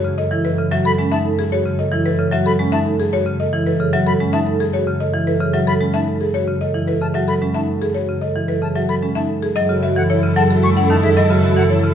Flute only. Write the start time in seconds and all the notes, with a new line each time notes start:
0.86 B5
1.12 A5
2.46 B5
2.73 A5
4.07 B5
4.34 A5
5.68 B5
5.94 A5
7.01 A5
7.28 B5
7.55 A5
8.62 A5
8.89 B5
9.16 A5
9.97 F#5
10.37 A5
10.64 C#6
10.90 A5
11.04 E5
11.57 F#5